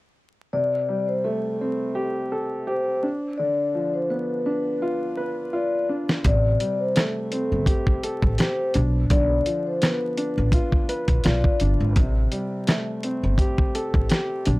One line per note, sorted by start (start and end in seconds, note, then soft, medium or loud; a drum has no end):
0.53 2.67 C3 medium
0.53 1.05 D5 loud
0.89 3.03 G3 medium
1.08 1.23 C5 medium
1.24 3.03 A3 medium
1.24 1.57 A4 medium
1.61 3.04 C4 medium
1.61 2.13 A4 medium
1.95 2.66 G4 medium
2.32 3.03 A4 medium
2.67 3.03 G4 medium
2.67 3.00 C5 medium
3.03 4.44 D4 medium
3.38 5.53 D3 medium
3.38 3.90 D5 loud
3.75 5.89 F3 medium
3.94 4.09 C5 medium
4.10 6.25 B3 medium
4.10 4.43 B4 medium
4.46 5.88 D4 medium
4.46 4.98 B4 medium
4.82 5.52 F4 medium
5.17 6.25 B4 medium
5.53 6.25 F4 medium
5.53 5.86 D5 medium
5.89 6.25 D4 medium
6.09 snare medium
6.24 6.54 A1 loud
6.24 8.39 C3 medium
6.24 6.77 D5 loud
6.24 kick loud
6.24 closed hi-hat medium
6.60 8.75 G3 medium
6.60 closed hi-hat medium
6.80 6.95 C5 medium
6.95 8.75 A3 medium
6.95 7.28 A4 medium
6.95 cross-stick medium
6.95 snare loud
6.95 closed hi-hat medium
7.31 8.75 C4 medium
7.31 7.83 A4 medium
7.31 closed hi-hat medium
7.52 7.65 G1 medium
7.66 8.37 G4 medium
7.66 kick medium
7.66 closed hi-hat medium
7.87 kick medium
8.03 8.75 A4 medium
8.03 closed hi-hat medium
8.22 8.36 A1 medium
8.22 kick medium
8.38 8.75 G4 medium
8.38 8.70 C5 medium
8.38 cross-stick medium
8.38 snare loud
8.38 closed hi-hat medium
8.74 9.04 B1 loud
8.74 10.16 D4 medium
8.74 closed hi-hat medium
9.10 9.39 B1 loud
9.10 11.25 D3 medium
9.10 9.62 D5 loud
9.10 kick loud
9.10 closed hi-hat medium
9.46 11.60 F3 medium
9.46 closed hi-hat medium
9.67 9.81 C5 medium
9.82 11.96 B3 medium
9.82 10.14 B4 medium
9.82 cross-stick medium
9.82 snare loud
9.82 closed hi-hat medium
10.17 11.59 D4 medium
10.17 10.69 B4 medium
10.17 closed hi-hat medium
10.38 10.50 A1 medium
10.52 11.23 F4 loud
10.52 kick loud
10.52 closed hi-hat medium
10.72 kick medium
10.89 11.96 B4 medium
10.89 closed hi-hat medium
11.08 11.22 B1 medium
11.08 kick medium
11.08 closed hi-hat medium
11.24 11.41 B1 medium
11.24 11.96 F4 loud
11.24 11.57 D5 medium
11.24 cross-stick medium
11.24 snare loud
11.24 closed hi-hat medium
11.44 kick medium
11.60 11.76 G1 medium
11.60 11.96 D4 medium
11.60 closed hi-hat medium
11.80 11.93 G#1 medium
11.96 12.25 A1 loud
11.96 14.10 C3 medium
11.96 kick loud
11.96 closed hi-hat medium
12.32 14.46 G3 medium
12.32 closed hi-hat medium
12.67 14.46 A3 medium
12.67 cross-stick medium
12.67 snare loud
12.67 closed hi-hat medium
13.03 14.47 C4 medium
13.03 closed hi-hat medium
13.23 13.36 G1 medium
13.38 14.09 G4 medium
13.38 kick loud
13.38 closed hi-hat medium
13.58 kick medium
13.75 14.46 A4 medium
13.75 closed hi-hat medium
13.94 14.07 A1 medium
13.94 kick medium
14.10 14.46 G4 medium
14.10 cross-stick medium
14.10 snare loud
14.10 closed hi-hat medium
14.46 14.60 B1 loud
14.46 14.60 D4 medium
14.46 closed hi-hat medium